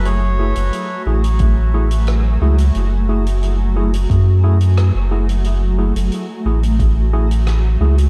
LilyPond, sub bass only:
\new Staff \with { instrumentName = "Sub bass" } { \clef bass \time 4/4 \key fis \minor \tempo 4 = 89 fis,,8. fis,,16 r8 a,,2 cis,8 | fis,,2 fis,4~ fis,16 fis,,8.~ | fis,,8. fis,,16 r8 a,,2 cis,8 | }